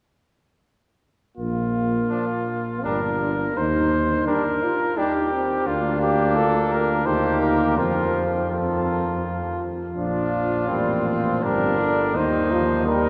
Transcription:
1.37 1.98 A#1 soft
1.37 2.86 A#3 soft
1.37 2.81 F4 medium
2.09 2.26 F3 soft
2.09 2.25 D4 soft
2.84 3.45 G1 soft
2.84 3.00 G3 soft
2.84 3.00 D4 soft
2.84 3.56 D4 soft
2.84 3.59 A#4 medium
3.56 4.16 D#2 soft
3.56 4.28 D#4 medium
3.56 4.27 C5 medium
4.27 4.43 G3 soft
4.27 4.43 D4 soft
4.27 4.64 D4 soft
4.27 4.99 A#4 medium
4.63 4.99 F4 medium
4.97 5.13 G3 soft
4.97 5.13 D4 soft
4.97 5.32 D#4 soft
4.97 5.69 G4 medium
5.32 5.69 C4 soft
5.66 7.08 D2 medium
5.66 7.02 A#3 medium
5.66 7.02 D4 soft
5.66 6.38 D4 soft
5.66 6.01 F4 medium
6.01 6.38 G4 medium
6.36 7.07 F4 soft
6.36 6.74 A4 medium
6.72 7.07 A#4 medium
7.06 7.80 D#2 soft
7.06 7.80 A#3 soft
7.06 7.80 D#4 soft
7.06 7.79 G4 soft
7.06 7.40 C5 medium
7.41 7.77 A#4 medium
7.77 9.64 F2 soft
7.77 8.50 F3 soft
7.77 9.60 C4 soft
7.77 8.50 F4 soft
7.77 8.24 A#4 medium
8.50 9.61 F3 soft
8.50 9.62 F4 soft
8.50 9.19 A4 soft
9.96 10.70 A#1 soft
9.96 10.70 F3 soft
9.96 10.65 D4 soft
9.96 10.70 D4 soft
9.96 11.40 F4 medium
10.68 11.42 A1 soft
10.68 11.07 G3 soft
10.68 11.42 A#3 soft
10.68 11.45 C4 soft
11.05 11.44 F3 soft
11.43 12.16 G1 soft
11.43 11.81 G3 soft
11.43 11.80 C4 soft
11.43 12.17 D4 soft
11.43 12.18 A#4 medium
11.79 12.16 D3 soft
11.79 12.15 D4 soft
12.15 13.09 D#2 soft
12.15 12.52 D#3 medium
12.15 12.86 D#4 soft
12.15 12.53 D#4 medium
12.15 12.86 C5 medium
12.51 12.87 F3 soft
12.51 12.86 F4 medium
12.86 13.09 G3 soft
12.86 13.09 D#4 soft
12.86 13.09 G4 soft
12.86 13.09 A#4 medium

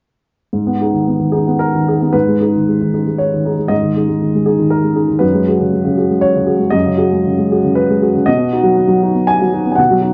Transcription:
0.53 2.09 G#2 soft
0.67 0.88 B3 soft
0.81 0.92 D#4 soft
0.81 0.93 G#4 soft
0.93 1.14 D#3 soft
1.08 1.28 B3 soft
1.20 1.40 D#3 soft
1.33 1.45 D#4 soft
1.33 1.45 G#4 soft
1.47 1.90 B3 soft
1.59 2.13 A#4 medium
1.75 1.95 D#3 soft
1.87 1.99 D#4 soft
1.87 1.99 G#4 soft
2.01 2.14 B3 soft
2.13 3.67 G#2 soft
2.13 3.18 B4 medium
2.28 2.49 G#3 soft
2.41 2.52 D#4 soft
2.41 2.53 G#4 soft
2.55 2.76 D#3 soft
2.68 2.88 G#3 soft
2.81 3.01 D#3 soft
2.94 3.05 D#4 soft
2.94 3.05 G#4 soft
3.07 3.48 G#3 soft
3.18 3.70 C#5 medium
3.34 3.53 D#3 soft
3.45 3.57 D#4 soft
3.45 3.57 G#4 soft
3.58 3.78 G#3 soft
3.68 5.18 G#2 soft
3.68 4.46 D#5 medium
3.82 4.03 D#3 soft
3.96 4.08 D#4 soft
3.96 4.08 G#4 soft
4.09 4.29 G#3 soft
4.22 4.42 D#3 soft
4.35 4.55 G#3 soft
4.46 4.59 D#4 soft
4.46 4.72 G#4 soft
4.59 5.00 D#3 soft
4.70 5.22 A#4 medium
4.84 5.04 G#3 soft
4.95 5.07 D#4 soft
4.95 5.08 G#4 soft
5.08 5.22 D#3 soft
5.19 6.69 F#2 soft
5.19 6.22 B4 medium
5.34 5.55 G#3 soft
5.48 5.59 F#4 soft
5.48 5.60 G#4 soft
5.59 5.80 C#3 soft
5.73 5.93 G#3 soft
5.84 6.05 C#3 soft
5.97 6.09 F#4 soft
5.97 6.10 G#4 soft
6.10 6.51 G#3 soft
6.21 6.73 C#5 medium
6.35 6.56 C#3 soft
6.46 6.59 F#4 soft
6.46 6.59 G#4 soft
6.59 6.80 G#3 soft
6.70 8.22 F#2 soft
6.70 7.74 D#5 medium
6.85 7.06 C#3 soft
6.97 7.10 F#4 soft
6.97 7.10 G#4 soft
7.12 7.33 G#3 soft
7.24 7.45 C#3 soft
7.38 7.58 G#3 soft
7.52 7.63 F#4 soft
7.52 7.63 G#4 soft
7.64 8.04 C#3 soft
7.75 8.01 B4 medium
7.90 8.10 G#3 soft
8.02 8.13 F#4 soft
8.02 8.13 G#4 soft
8.14 8.27 C#3 soft
8.26 9.74 B2 soft
8.26 9.27 D#5 medium
8.38 8.59 B3 soft
8.52 8.64 D#4 soft
8.52 8.64 F#4 soft
8.63 8.84 F#3 soft
8.77 8.98 B3 soft
8.88 9.09 F#3 soft
9.02 9.14 D#4 soft
9.02 9.14 F#4 soft
9.15 9.55 B3 soft
9.27 9.70 G#5 medium
9.41 9.61 F#3 soft
9.53 9.64 D#4 soft
9.53 9.64 F#4 soft
9.66 9.86 B3 soft
9.72 10.14 F#5 medium
9.72 9.78 G#5 soft
9.78 10.14 B2 soft
9.91 10.11 F#3 soft
10.01 10.14 D#4 soft
10.01 10.14 F#4 soft

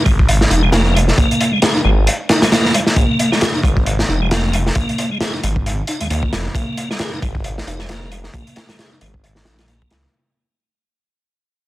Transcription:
0.06 0.45 G#1 loud
0.06 0.11 G#3 medium
0.06 kick medium
0.06 closed hi-hat medium
0.19 kick loud
0.29 closed hi-hat medium
0.41 snare medium
0.50 1.12 F1 loud
0.50 0.62 D#4 medium
0.50 closed hi-hat medium
0.63 0.70 G#3 medium
0.72 0.94 A#3 medium
0.72 snare loud
0.72 closed hi-hat medium
0.95 1.01 G#3 medium
0.95 closed hi-hat medium
1.08 snare soft
1.18 1.26 A#1 loud
1.18 1.52 A#3 medium
1.18 kick loud
1.18 closed hi-hat medium
1.31 closed hi-hat soft
1.41 closed hi-hat medium
1.53 1.60 G#3 medium
1.62 1.74 G#4 medium
1.62 snare loud
1.62 closed hi-hat medium
1.75 1.82 D#4 medium
1.84 2.07 G#1 loud
1.84 1.90 G#3 medium
2.07 closed hi-hat medium
2.29 2.41 D#4 medium
2.29 snare loud
2.29 closed hi-hat medium
2.42 2.49 G#3 medium
2.42 snare loud
2.42 closed hi-hat medium
2.52 2.73 A#3 medium
2.52 snare loud
2.52 closed hi-hat medium
2.65 snare soft
2.74 2.80 G#3 medium
2.74 closed hi-hat medium
2.87 snare soft
2.96 3.04 A#1 loud
2.96 3.31 A#3 medium
2.96 kick loud
2.96 closed hi-hat medium
3.19 closed hi-hat medium
3.32 3.39 G#3 medium
3.32 snare soft
3.41 3.53 G#4 medium
3.41 snare loud
3.41 closed hi-hat medium
3.54 3.61 D#4 medium
3.63 4.02 G#1 loud
3.63 3.70 G#3 medium
3.63 kick medium
3.63 closed hi-hat medium
3.77 kick medium
3.86 closed hi-hat medium
3.99 snare medium
4.08 4.70 F1 loud
4.08 4.21 D#4 medium
4.22 4.29 G#3 medium
4.31 4.53 A#3 medium
4.31 snare loud
4.31 closed hi-hat medium
4.53 4.59 G#3 medium
4.53 closed hi-hat medium
4.66 snare soft
4.75 4.84 A#1 loud
4.75 5.10 A#3 medium
4.75 kick loud
4.75 closed hi-hat medium
4.89 closed hi-hat soft
4.98 closed hi-hat medium
5.11 5.18 G#3 medium
5.21 5.32 G#4 medium
5.21 snare loud
5.21 closed hi-hat medium
5.34 5.41 D#4 medium
5.43 5.82 G#1 loud
5.43 5.49 G#3 medium
5.43 closed hi-hat medium
5.56 kick medium
5.66 closed hi-hat medium
5.87 6.00 D#4 medium
5.87 closed hi-hat medium
6.01 6.08 D#2 soft
6.01 6.08 G#3 medium
6.01 closed hi-hat soft
6.10 6.25 D#2 loud
6.10 6.32 A#3 medium
6.10 closed hi-hat medium
6.23 kick medium
6.33 6.48 F1 medium
6.33 6.38 G#3 medium
6.33 snare loud
6.33 closed hi-hat medium
6.55 6.63 A#1 loud
6.55 6.89 A#3 medium
6.55 kick loud
6.55 closed hi-hat medium
6.77 closed hi-hat medium
6.91 6.97 G#3 medium
6.91 snare soft
6.99 7.12 G#4 medium
6.99 snare loud
6.99 closed hi-hat medium
7.13 7.20 D#4 medium
7.22 7.61 G#1 medium
7.22 7.28 G#3 medium
7.22 kick medium
7.22 closed hi-hat medium
7.35 kick medium
7.44 closed hi-hat medium
7.58 snare medium
7.67 8.28 F1 loud
7.67 7.79 D#4 medium
7.67 closed hi-hat medium
7.79 7.87 G#3 medium
7.79 snare soft
7.89 8.11 A#3 medium
7.89 snare loud
7.89 closed hi-hat medium
8.12 8.17 G#3 medium
8.12 closed hi-hat medium
8.24 snare soft
8.34 8.42 A#1 loud
8.34 8.68 A#3 medium
8.34 kick loud
8.34 closed hi-hat medium
8.47 closed hi-hat soft
8.56 snare loud
8.56 closed hi-hat medium
8.69 8.76 G#3 medium
8.69 snare loud
8.69 closed hi-hat medium
8.79 8.91 G#4 medium
8.79 snare loud
8.79 closed hi-hat medium
8.92 8.99 D#4 medium
9.01 9.48 G#1 loud
9.01 9.07 G#3 medium
9.01 closed hi-hat medium
9.14 kick medium
9.24 closed hi-hat medium
9.36 snare soft
9.45 9.85 A#1 medium
9.45 9.58 D#4 medium
9.45 snare loud
9.45 closed hi-hat medium
9.59 9.66 G#3 medium
9.59 snare medium
9.59 closed hi-hat medium
9.68 9.90 A#3 medium
9.68 closed hi-hat medium
9.82 kick medium
9.91 10.06 C#2 loud
9.91 9.97 G#3 medium
9.91 snare loud
9.91 closed hi-hat medium

